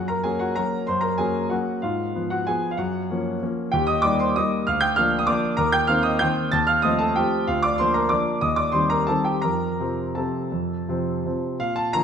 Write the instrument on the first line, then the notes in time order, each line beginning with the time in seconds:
grand piano
Already playing: F#2
0.08 A#4 A#5
0.23 F#3 A#3 C#4 G#4 G#5
0.39 F#4 F#5
0.56 F#3 A#3 C#4 A#4 A#5
0.87 F#2 C5 C6
1.01 A#4 A#5
1.18 F#3 A#3 C#4 G#4 G#5
1.50 F#3 A#3 C#4 F#4 F#5
1.82 G#2 F4 F5
2.15 F3 B3
2.30 F#4 F#5
2.47 F3 B3 G#4 G#5
2.71 F5
2.77 F#2 F#4 F#5
3.10 F3 A#3 C#4
3.42 F3 A#3 C#4
3.72 D#2 G4 G5
3.87 D#5 D#6
4.02 G3 A#3 D#4 D5 D6
4.19 C5 C6
4.36 G3 A#3 D#4 D#5 D#6
4.67 D2 F5 F6
4.80 G5 G6
4.96 F3 A#3 D4 F5 F6
5.19 D#6
5.27 F3 A#3 D4 D5 D6
5.57 D#2 A#4 A#5
5.72 G5 G6
5.87 D#3 A#3 C4 F5 F6
6.03 D#5 D#6
6.19 D#3 A#3 C4 G5 G6
6.52 D#2 A5 A6
6.67 F5 F6
6.82 F3 A3 C4 D#5 D#6
6.99 A4 A5
7.16 F3 A3 C4 G4 G5
7.47 D2 F4 F5
7.63 D5 D6
7.78 F3 A#3 D4 C5 C6
7.94 A#4 A#5
8.09 F3 A#3 D4 D5 D6
8.41 D#2 D#5 D#6
8.56 D5 D6
8.72 D#3 G3 C4 C5 C6
8.90 A#4 A#5
9.07 D#3 G3 C4 A4 A5
9.24 G4 G5
9.42 F2 A#4 A#5
9.80 C3 F3 C4
10.15 C3 F3 C4 A4 A5
10.52 F2
10.89 C3 F3 C4
11.25 C3 F3 C4
11.60 A#2 F5
11.76 A5
11.93 D3 F3 A#3 A#5